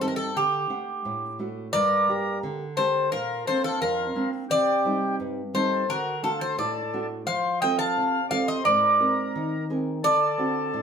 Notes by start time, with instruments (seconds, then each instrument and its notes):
Already playing: nylon-string guitar G2
0.01 nylon-string guitar C4 D#4 G4, bouzouki A4
0.08 bouzouki A#4
0.16 bouzouki A4
0.36 nylon-string guitar D3, bouzouki G4
0.70 nylon-string guitar A3 D4 F#5
1.05 nylon-string guitar A2
1.39 nylon-string guitar A3 D4 F#4
1.73 nylon-string guitar G2, accordion A#4, bouzouki D5
2.09 nylon-string guitar A#3 D4 G4
2.43 nylon-string guitar D3
2.76 nylon-string guitar A#3 D4 G4, accordion A4, bouzouki C5
3.11 nylon-string guitar A#2, accordion F4, bouzouki A#4
3.46 nylon-string guitar A#3 C4 D4, accordion A4, bouzouki C5
3.64 accordion F4, bouzouki A4
3.80 nylon-string guitar F2, accordion F4, bouzouki A#4
4.15 nylon-string guitar A#3 C4 D4
4.49 nylon-string guitar C3, accordion G4, bouzouki D5
4.85 nylon-string guitar G3 C4 D#4
5.20 nylon-string guitar G2
5.54 nylon-string guitar G3 C4 D#4, accordion A4, bouzouki C5
5.89 nylon-string guitar D3, accordion F#4, bouzouki A#4
6.23 nylon-string guitar A3 D4 F#4, accordion F4, bouzouki A4
6.40 accordion A4, bouzouki C5
6.58 nylon-string guitar A2, accordion A4, bouzouki D5
6.94 nylon-string guitar A3 D4 F#4
7.27 nylon-string guitar F3, accordion C5, bouzouki F5
7.60 nylon-string guitar C4 F4 A4, accordion D#5, bouzouki G5
7.77 accordion F5, bouzouki A5
7.98 nylon-string guitar C3
8.29 nylon-string guitar C4 F4 A4, accordion D5, bouzouki F5
8.46 accordion C5, bouzouki D#5
8.64 nylon-string guitar G#2, accordion A#4, bouzouki D5
8.99 nylon-string guitar C4 G#4 A#4
9.36 nylon-string guitar D#3
9.70 nylon-string guitar C4 G#4 A#4
10.04 nylon-string guitar D3, accordion A4, bouzouki D5
10.38 nylon-string guitar C4 D4 F#4
10.74 nylon-string guitar A2